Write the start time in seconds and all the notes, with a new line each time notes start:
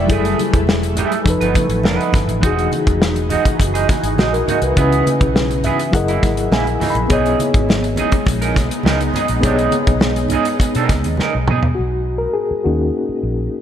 Already playing: A3 B4 D5 E5 G5
0.07 F#1 F#3 E4 G#4, kick, closed hi-hat, muted conga, low conga
0.11 A3 E4 G#4 A4
0.25 closed hi-hat
0.39 closed hi-hat, muted conga, high conga
0.54 E1, muted clean electric guitar stroke, kick, closed hi-hat
0.67 muted clean electric guitar stroke, snare, muted conga
0.83 muted clean electric guitar stroke, closed hi-hat
0.96 A3 E4 G#4, closed hi-hat, low conga
1.12 muted clean electric guitar stroke, closed hi-hat
1.24 F1 F3 D#4 A4, muted clean electric guitar stroke, kick, closed hi-hat
1.29 D#4 B4
1.40 G1 B3 D#4 B4, closed hi-hat
1.54 muted clean electric guitar stroke, kick, closed hi-hat, muted conga, high conga
1.69 A1, muted clean electric guitar stroke, closed hi-hat
1.83 F1 A#3 D4 A#4, snare, muted conga, high conga
1.95 B3 D#4 B4
2.01 closed hi-hat
2.13 G1, muted clean electric guitar stroke, kick, snare, closed hi-hat, muted conga, high conga, low conga
2.27 A1, muted clean electric guitar stroke, closed hi-hat
2.41 E1 E3 G#3 D#4 F#4 G#4, kick, closed hi-hat, low conga
2.45 F#4 G#4
2.59 closed hi-hat
2.72 closed hi-hat, muted conga, high conga
2.87 E1, muted clean electric guitar stroke, kick, closed hi-hat
3.01 muted clean electric guitar stroke, snare
3.16 muted clean electric guitar stroke, closed hi-hat
3.30 G#3 D#4 F#4, closed hi-hat, low conga
3.45 muted clean electric guitar stroke, kick, closed hi-hat
3.59 F#1, muted clean electric guitar stroke, kick, closed hi-hat, muted conga
3.74 G#3 D#4 G#4, closed hi-hat
3.89 muted clean electric guitar stroke, kick, snare, closed hi-hat, muted conga, high conga
4.03 G#1, muted clean electric guitar stroke, closed hi-hat
4.17 A#1 G#3 D#4 F#4 G#4, snare, high conga
4.33 A#4, muted clean electric guitar stroke, closed hi-hat
4.48 G#3 D#4 F#4, closed hi-hat, muted conga, high conga, low conga
4.62 C2 B4, closed hi-hat
4.75 C#2 C#3 B3 C#4 E4 G#4, kick, closed hi-hat, low conga
4.81 B4
4.92 closed hi-hat
5.07 closed hi-hat, muted conga, high conga
5.21 B1, muted clean electric guitar stroke, kick, closed hi-hat
5.36 muted clean electric guitar stroke, snare, muted conga
5.50 muted clean electric guitar stroke, closed hi-hat
5.63 B3 E4 G#4 E5, closed hi-hat, muted conga, low conga
5.79 muted clean electric guitar stroke, closed hi-hat
5.92 F#1 F#3 E4 G#4 A#4 F#5, muted clean electric guitar stroke, kick, closed hi-hat, muted conga
5.97 D#5
6.08 E3 A#3 E4, closed hi-hat
6.23 G#1, muted clean electric guitar stroke, kick, snare, closed hi-hat, high conga
6.37 muted clean electric guitar stroke, closed hi-hat
6.52 A#1 E3 A#3 E4 G#5, snare, muted conga, high conga
6.66 muted clean electric guitar stroke, closed hi-hat
6.80 E3 A#3 D#4, snare, open hi-hat, muted conga, high conga, low conga
6.90 B5
6.95 A#1, muted clean electric guitar stroke, closed hi-hat
7.08 B1 G#3 B3 C#4 D#4 G#4 C#5, kick, closed hi-hat, low conga
7.12 G#4 D#5
7.26 closed hi-hat
7.39 closed hi-hat, muted conga, high conga
7.54 G#1, muted clean electric guitar stroke, kick, closed hi-hat
7.68 muted clean electric guitar stroke, snare, muted conga
7.83 muted clean electric guitar stroke, closed hi-hat
7.96 C#4 D#4 G#4, closed hi-hat, muted conga, low conga
8.12 muted clean electric guitar stroke, kick, closed hi-hat
8.26 A#1, muted clean electric guitar stroke, kick, closed hi-hat, muted conga
8.41 C#4 D#4 A#4, closed hi-hat
8.54 B1, muted clean electric guitar stroke, kick, snare, closed hi-hat, muted conga, high conga
8.71 muted clean electric guitar stroke, closed hi-hat
8.83 C#2 C#4 D#4 A#4, snare, muted conga, high conga
9.00 muted clean electric guitar stroke, closed hi-hat
9.14 C#4 D#4 G#4, closed hi-hat, muted conga, high conga, low conga
9.28 A#1, muted clean electric guitar stroke, closed hi-hat
9.41 B1 B3 C4 G#4 C#5, kick, closed hi-hat, low conga
9.45 D4 G4 D#5
9.55 C#4 D#4 G#4, closed hi-hat
9.71 closed hi-hat, muted conga, high conga
9.87 B1, muted clean electric guitar stroke, kick, closed hi-hat
10.00 muted clean electric guitar stroke, snare, muted conga
10.16 muted clean electric guitar stroke, closed hi-hat
10.28 C#4, closed hi-hat, muted conga, low conga
10.33 D#4 G#4
10.45 muted clean electric guitar stroke, closed hi-hat
10.59 muted clean electric guitar stroke, kick, closed hi-hat, muted conga
10.75 B2 C#4 D#4 A#4, closed hi-hat
10.89 C#2, muted clean electric guitar stroke, kick, snare, closed hi-hat, high conga
11.04 D#2, muted clean electric guitar stroke, closed hi-hat
11.17 C#4 D#4, muted fingered electric bass stroke, snare, high conga
11.22 A#4
11.34 B1, muted clean electric guitar stroke
11.48 B2 C#4 D#4 G#4, mid tom, high conga, low conga
11.63 muted clean electric guitar stroke, floor tom
11.75 B1 F#4
12.18 A#4
12.34 G#4
12.51 muted fingered electric bass stroke
12.64 D#2 A#3 C#4 D#4 F#4
13.09 muted fingered electric bass stroke
13.23 A#1